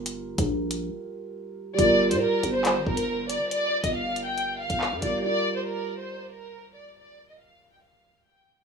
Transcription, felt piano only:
\new Staff \with { instrumentName = "Felt piano" } { \time 4/4 \key g \minor \tempo 4 = 139 <g f' bes'>1 | <g f' bes'>1~ | <g f' bes'>2.~ <g f' bes'>8 <g f' bes'>8 | <g f' bes'>1~ |
<g f' bes'>1 | }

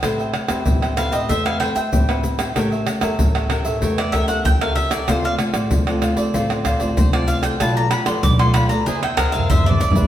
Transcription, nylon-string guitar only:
\new Staff \with { instrumentName = "Nylon-string guitar" } { \time 4/4 \key a \minor \tempo 4 = 95 << { <c' g' b'>8. <c' g' b'>8. <c' g' b'>8 r16 <c' g' b'>16 <c' g' b'>16 r16 <c' g' b'>16 <c' g' b'>8. | <cis' g' bes'>8. <cis' g' bes'>8. <cis' g' bes'>8. r16 <cis' g' bes'>8 r16 <cis' g' bes'>8. | <a c' f'>8 <a c' f'>8. <a c' f'>8. <a c' f'>8. <a c' f'>8 <a c' f'>8. | <a d' f'>8 <a d' f'>8 r16 <a d' f'>8. <d' gis' bis'>16 r16 <d' gis' bis'>8 r16 <d' gis' bis'>8 <cis' gis' b'>16 | } \\ { a4 e4 a4 e4 | a4 e4 a4 e4 | d4 a,4 d4 a,4 | b,4 b,4 e4 e4 | } >> }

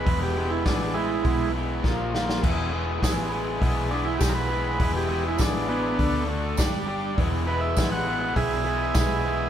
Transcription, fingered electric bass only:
\new Staff \with { instrumentName = "Fingered electric bass" } { \clef bass \time 4/4 \key e \mixolydian \tempo 4 = 101 e,,4 a,,4 b,,4 ais,,4 | e,,4 a,,4 b,,4 b,,4 | e,,4 a,,4 d,4 g,,4 | e,,4 a,,4 b,,4 b,,4 | }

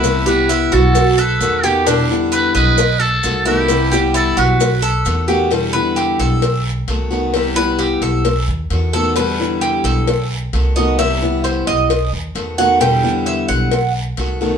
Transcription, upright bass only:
\new Staff \with { instrumentName = "Upright bass" } { \clef bass \time 4/4 \key e \minor \tempo 4 = 132 c,4. b,,4. e,4~ | e,4. b,,4. c,4~ | c,4. b,,4. e,4~ | e,4. b,,4. c,4~ |
c,4. b,,4 dis,8 e,4~ | e,4. b,,4. c,4~ | c,4. b,,4 dis,8 e,4~ | e,4. b,,4. c,4 | }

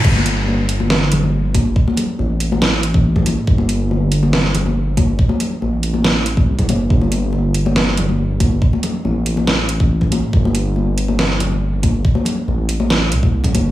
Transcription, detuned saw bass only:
\new Staff \with { instrumentName = "Detuned saw bass" } { \clef bass \time 4/4 \key c \dorian \tempo 4 = 140 g,,1 | r4 a,,2~ a,,8 r8 | g,,1 | r4 a,,2 c,8 g,,8 |
g,,1 | r4 a,,2~ a,,8 r8 | g,,1 | r4 a,,4. c,4 g,,8 | }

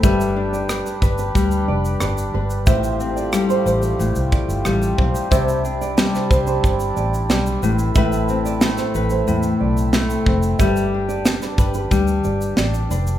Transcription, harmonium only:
\new Staff \with { instrumentName = "Harmonium" } { \time 4/4 \key g \mixolydian \tempo 4 = 91 << { <d' b'>1 | <a c' f' c''>1 | <d' e' d''>2.~ <d' e' d''>8 <a' e''>8~ | <a' e''>1 |
d'1 | } \\ { g'1~ | g'1 | g'2.~ g'8 r8 | r1 |
g'1 | } >> }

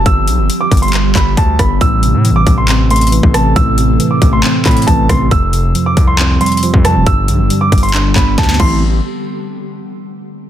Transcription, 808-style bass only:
\new Staff \with { instrumentName = "808-style bass" } { \clef bass \time 4/4 \key a \minor \tempo 4 = 137 g,,8 b,,16 g,,16 r8 g,,4 g,,8 d,8 g,,8 | a,,8. a,16. a,,16. a,,4.~ a,,16 a,,8. | a,,4 r8 a,,8 r8 a,8 a,,8 a,,8 | f,,4 r8 c,4 r8. f,8 e,,16 |
g,,8 b,,16 g,,16 r8 g,,4 g,,8 d,8 a,,8~ | a,,8 r2. r8 | }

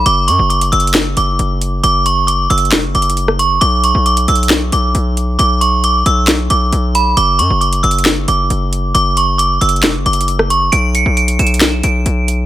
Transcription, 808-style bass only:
\new Staff \with { instrumentName = "808-style bass" } { \clef bass \time 4/4 \key b \minor \tempo 4 = 135 fis,,8 fis,16 fis,,8. fis,,4 fis,,8 fis,,4 | fis,,4. fis,,8 e,,16 fis,,16 fis,,4. | b,,8. b,,8. b,,4 b,,8 b,,4 | b,,4. b,,4 b,,8 b,,4 |
fis,,8 fis,16 fis,,8. fis,,4 fis,,8 fis,,4 | fis,,4. fis,,8 e,,16 fis,,16 fis,,4. | b,,8. b,,8. b,,4 b,,8 b,,4 | }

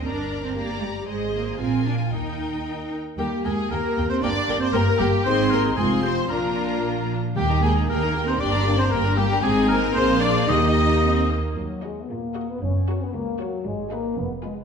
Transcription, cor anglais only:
\new Staff \with { instrumentName = "Cor anglais" } { \time 2/4 \key ees \major \tempo 4 = 115 r2 | r2 | r2 | g'8 aes'8 bes'8. c''16 |
d''8. c''16 bes'8 g'8 | c''8 bes'8 aes'8 c''8 | bes'4. r8 | g'8 aes'8 bes'8. c''16 |
d''8. c''16 bes'8 g'8 | aes'8 bes'8 c''8 d''8 | ees''4. r8 | \key ees \minor r2 |
r2 | r2 | }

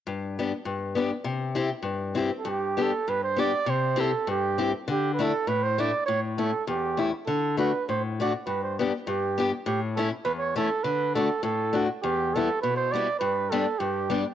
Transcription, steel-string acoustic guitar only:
\new Staff \with { instrumentName = "Steel-string acoustic guitar" } { \time 2/4 \key g \major \tempo 4 = 100 << { r8 <b d' g'>8 r8 <b d' g'>8 | r8 <c' e' g'>8 r8 <c' e' g'>8 | r8 <b d' g'>8 r8 <b d' g'>8 | r8 <c' e' g'>8 r8 <c' e' g'>8 |
r8 <a d' e'>8 r8 <a d' e'>8 | r8 <a cis' e'>8 r8 <a cis' e'>8 | r8 <a d' fis'>8 r8 <a d' fis'>8 | r8 <b d' g'>8 r8 <b d' g'>8 |
r8 <a cis' e'>8 r8 <a cis' e'>8 | r8 <a d' fis'>8 r8 <a d' fis'>8 | r8 <g b e'>8 r8 <g b e'>8 | r8 <g b d'>8 r8 <g b d'>8 | } \\ { g,4 g,4 | c4 g,4 | g,4 g,4 | c4 g,4 |
d4 a,4 | a,4 e,4 | d4 a,4 | g,4 g,4 |
a,4 e,4 | d4 a,4 | e,4 b,4 | g,4 g,4 | } >> }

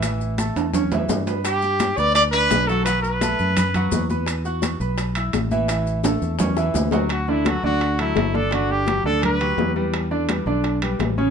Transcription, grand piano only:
\new Staff \with { instrumentName = "Grand piano" } { \time 4/4 \key d \major \tempo 4 = 170 <e e' e''>4 <a a' a''>4 <cis' cis'' cis'''>8 <e e' e''>4 <b b' b''>8~ | <b b' b''>8 <g' g'' g'''>4 <b b' b''>4 <d' d'' d'''>4 <fis fis' fis''>8 | <fis fis' fis''>4 <a a' a''>4 <b b' b''>8 <fis fis' fis''>4 <b b' b''>8~ | <b b' b''>8 <fis' fis'' fis'''>4 <b b' b''>4 <e' e'' e'''>4 <e e' e''>8 |
<e e' e''>4 <a a' a''>4 <cis' cis'' cis'''>8 <e e' e''>4 <fis fis' fis''>8 | r8 <d d' d''>8 <fis fis' a'>8 <d d' d''>4 <fis fis' a'>4 <d d' d''>8 | <d d' d''>4 <fis fis' g'>8 <d d' d''>4 <fis fis' g'>8 <fis fis' g'>8 <g g' b'>8~ | <g g' b'>8 <d d' d''>8 <g g' b'>8 <d d' d''>4 <g g' b'>4 <cis cis' cis''>8 | }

